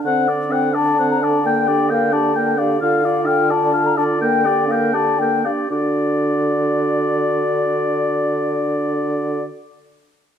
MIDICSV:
0, 0, Header, 1, 6, 480
1, 0, Start_track
1, 0, Tempo, 462606
1, 50, Time_signature, 6, 3, 24, 8
1, 4369, Tempo, 494641
1, 10361, End_track
2, 0, Start_track
2, 0, Title_t, "Flute"
2, 0, Program_c, 0, 73
2, 43, Note_on_c, 0, 78, 59
2, 316, Note_off_c, 0, 78, 0
2, 539, Note_on_c, 0, 79, 51
2, 766, Note_off_c, 0, 79, 0
2, 772, Note_on_c, 0, 81, 54
2, 1131, Note_off_c, 0, 81, 0
2, 1145, Note_on_c, 0, 82, 50
2, 1260, Note_on_c, 0, 81, 51
2, 1275, Note_off_c, 0, 82, 0
2, 1511, Note_on_c, 0, 79, 50
2, 1527, Note_off_c, 0, 81, 0
2, 1980, Note_off_c, 0, 79, 0
2, 1985, Note_on_c, 0, 77, 48
2, 2207, Note_on_c, 0, 81, 57
2, 2222, Note_off_c, 0, 77, 0
2, 2453, Note_on_c, 0, 79, 46
2, 2469, Note_off_c, 0, 81, 0
2, 2682, Note_on_c, 0, 77, 49
2, 2697, Note_off_c, 0, 79, 0
2, 2914, Note_off_c, 0, 77, 0
2, 2920, Note_on_c, 0, 77, 57
2, 3381, Note_off_c, 0, 77, 0
2, 3387, Note_on_c, 0, 79, 55
2, 3640, Note_on_c, 0, 81, 55
2, 3656, Note_off_c, 0, 79, 0
2, 4007, Note_on_c, 0, 82, 49
2, 4023, Note_off_c, 0, 81, 0
2, 4118, Note_off_c, 0, 82, 0
2, 4124, Note_on_c, 0, 81, 48
2, 4186, Note_off_c, 0, 81, 0
2, 4378, Note_on_c, 0, 79, 60
2, 4824, Note_off_c, 0, 79, 0
2, 4830, Note_on_c, 0, 77, 44
2, 5068, Note_on_c, 0, 81, 54
2, 5082, Note_off_c, 0, 77, 0
2, 5317, Note_on_c, 0, 79, 42
2, 5331, Note_off_c, 0, 81, 0
2, 5565, Note_off_c, 0, 79, 0
2, 5571, Note_on_c, 0, 77, 32
2, 5629, Note_off_c, 0, 77, 0
2, 5810, Note_on_c, 0, 74, 38
2, 9435, Note_off_c, 0, 74, 0
2, 10361, End_track
3, 0, Start_track
3, 0, Title_t, "Oboe"
3, 0, Program_c, 1, 68
3, 61, Note_on_c, 1, 78, 37
3, 298, Note_on_c, 1, 74, 32
3, 314, Note_off_c, 1, 78, 0
3, 537, Note_on_c, 1, 78, 32
3, 553, Note_off_c, 1, 74, 0
3, 773, Note_on_c, 1, 74, 32
3, 789, Note_off_c, 1, 78, 0
3, 1018, Note_off_c, 1, 74, 0
3, 1031, Note_on_c, 1, 78, 30
3, 1283, Note_on_c, 1, 74, 29
3, 1299, Note_off_c, 1, 78, 0
3, 1512, Note_off_c, 1, 74, 0
3, 1517, Note_on_c, 1, 79, 37
3, 1742, Note_on_c, 1, 74, 32
3, 1758, Note_off_c, 1, 79, 0
3, 1973, Note_on_c, 1, 79, 32
3, 1989, Note_off_c, 1, 74, 0
3, 2207, Note_on_c, 1, 74, 29
3, 2223, Note_off_c, 1, 79, 0
3, 2434, Note_off_c, 1, 74, 0
3, 2440, Note_on_c, 1, 79, 34
3, 2679, Note_on_c, 1, 74, 30
3, 2694, Note_off_c, 1, 79, 0
3, 2909, Note_off_c, 1, 74, 0
3, 2915, Note_on_c, 1, 77, 36
3, 3168, Note_on_c, 1, 74, 32
3, 3184, Note_off_c, 1, 77, 0
3, 3382, Note_on_c, 1, 77, 36
3, 3397, Note_off_c, 1, 74, 0
3, 3635, Note_on_c, 1, 74, 33
3, 3651, Note_off_c, 1, 77, 0
3, 3871, Note_off_c, 1, 74, 0
3, 3877, Note_on_c, 1, 77, 30
3, 4121, Note_on_c, 1, 74, 34
3, 4136, Note_off_c, 1, 77, 0
3, 4370, Note_off_c, 1, 74, 0
3, 4373, Note_on_c, 1, 79, 36
3, 4613, Note_on_c, 1, 74, 32
3, 4628, Note_off_c, 1, 79, 0
3, 4858, Note_on_c, 1, 79, 32
3, 4873, Note_off_c, 1, 74, 0
3, 5085, Note_on_c, 1, 74, 28
3, 5100, Note_off_c, 1, 79, 0
3, 5327, Note_off_c, 1, 74, 0
3, 5338, Note_on_c, 1, 79, 26
3, 5575, Note_on_c, 1, 74, 27
3, 5590, Note_off_c, 1, 79, 0
3, 5819, Note_off_c, 1, 74, 0
3, 5825, Note_on_c, 1, 74, 29
3, 9442, Note_off_c, 1, 74, 0
3, 10361, End_track
4, 0, Start_track
4, 0, Title_t, "Clarinet"
4, 0, Program_c, 2, 71
4, 64, Note_on_c, 2, 72, 32
4, 307, Note_on_c, 2, 69, 34
4, 323, Note_off_c, 2, 72, 0
4, 535, Note_on_c, 2, 72, 34
4, 551, Note_off_c, 2, 69, 0
4, 781, Note_on_c, 2, 69, 35
4, 796, Note_off_c, 2, 72, 0
4, 1017, Note_off_c, 2, 69, 0
4, 1023, Note_on_c, 2, 72, 33
4, 1269, Note_on_c, 2, 69, 32
4, 1284, Note_off_c, 2, 72, 0
4, 1501, Note_off_c, 2, 69, 0
4, 1507, Note_on_c, 2, 70, 30
4, 1736, Note_on_c, 2, 67, 31
4, 1752, Note_off_c, 2, 70, 0
4, 1985, Note_on_c, 2, 70, 34
4, 2000, Note_off_c, 2, 67, 0
4, 2211, Note_on_c, 2, 67, 30
4, 2227, Note_off_c, 2, 70, 0
4, 2445, Note_off_c, 2, 67, 0
4, 2451, Note_on_c, 2, 70, 29
4, 2698, Note_on_c, 2, 67, 29
4, 2714, Note_off_c, 2, 70, 0
4, 2923, Note_off_c, 2, 67, 0
4, 2929, Note_on_c, 2, 69, 34
4, 3162, Note_on_c, 2, 65, 32
4, 3178, Note_off_c, 2, 69, 0
4, 3395, Note_on_c, 2, 69, 36
4, 3411, Note_off_c, 2, 65, 0
4, 3633, Note_on_c, 2, 65, 37
4, 3649, Note_off_c, 2, 69, 0
4, 3871, Note_off_c, 2, 65, 0
4, 3878, Note_on_c, 2, 69, 33
4, 4133, Note_on_c, 2, 65, 31
4, 4148, Note_off_c, 2, 69, 0
4, 4363, Note_off_c, 2, 65, 0
4, 4370, Note_on_c, 2, 70, 33
4, 4601, Note_on_c, 2, 67, 34
4, 4616, Note_off_c, 2, 70, 0
4, 4840, Note_on_c, 2, 70, 37
4, 4854, Note_off_c, 2, 67, 0
4, 5076, Note_on_c, 2, 67, 33
4, 5090, Note_off_c, 2, 70, 0
4, 5323, Note_off_c, 2, 67, 0
4, 5334, Note_on_c, 2, 70, 28
4, 5579, Note_on_c, 2, 67, 25
4, 5594, Note_off_c, 2, 70, 0
4, 5809, Note_off_c, 2, 67, 0
4, 5815, Note_on_c, 2, 66, 30
4, 9438, Note_off_c, 2, 66, 0
4, 10361, End_track
5, 0, Start_track
5, 0, Title_t, "French horn"
5, 0, Program_c, 3, 60
5, 57, Note_on_c, 3, 60, 34
5, 292, Note_on_c, 3, 62, 35
5, 308, Note_off_c, 3, 60, 0
5, 513, Note_on_c, 3, 60, 31
5, 529, Note_off_c, 3, 62, 0
5, 778, Note_on_c, 3, 62, 33
5, 794, Note_off_c, 3, 60, 0
5, 1017, Note_off_c, 3, 62, 0
5, 1023, Note_on_c, 3, 60, 30
5, 1282, Note_on_c, 3, 62, 30
5, 1297, Note_off_c, 3, 60, 0
5, 1506, Note_off_c, 3, 62, 0
5, 1512, Note_on_c, 3, 58, 35
5, 1751, Note_on_c, 3, 62, 31
5, 1767, Note_off_c, 3, 58, 0
5, 1979, Note_on_c, 3, 58, 29
5, 1994, Note_off_c, 3, 62, 0
5, 2202, Note_on_c, 3, 62, 28
5, 2218, Note_off_c, 3, 58, 0
5, 2430, Note_off_c, 3, 62, 0
5, 2436, Note_on_c, 3, 58, 29
5, 2681, Note_on_c, 3, 62, 31
5, 2696, Note_off_c, 3, 58, 0
5, 2912, Note_off_c, 3, 62, 0
5, 2919, Note_on_c, 3, 65, 39
5, 3156, Note_on_c, 3, 62, 35
5, 3172, Note_off_c, 3, 65, 0
5, 3391, Note_on_c, 3, 65, 30
5, 3407, Note_off_c, 3, 62, 0
5, 3642, Note_on_c, 3, 62, 29
5, 3658, Note_off_c, 3, 65, 0
5, 3869, Note_off_c, 3, 62, 0
5, 3875, Note_on_c, 3, 65, 35
5, 4128, Note_on_c, 3, 62, 32
5, 4143, Note_off_c, 3, 65, 0
5, 4367, Note_off_c, 3, 62, 0
5, 4373, Note_on_c, 3, 58, 39
5, 4608, Note_on_c, 3, 62, 35
5, 4623, Note_off_c, 3, 58, 0
5, 4841, Note_on_c, 3, 58, 33
5, 4856, Note_off_c, 3, 62, 0
5, 5081, Note_on_c, 3, 62, 30
5, 5096, Note_off_c, 3, 58, 0
5, 5323, Note_off_c, 3, 62, 0
5, 5329, Note_on_c, 3, 58, 28
5, 5579, Note_on_c, 3, 62, 24
5, 5593, Note_off_c, 3, 58, 0
5, 5811, Note_off_c, 3, 62, 0
5, 5817, Note_on_c, 3, 62, 32
5, 9438, Note_off_c, 3, 62, 0
5, 10361, End_track
6, 0, Start_track
6, 0, Title_t, "Bassoon"
6, 0, Program_c, 4, 70
6, 52, Note_on_c, 4, 50, 39
6, 2880, Note_off_c, 4, 50, 0
6, 2922, Note_on_c, 4, 50, 41
6, 5538, Note_off_c, 4, 50, 0
6, 5825, Note_on_c, 4, 50, 29
6, 9442, Note_off_c, 4, 50, 0
6, 10361, End_track
0, 0, End_of_file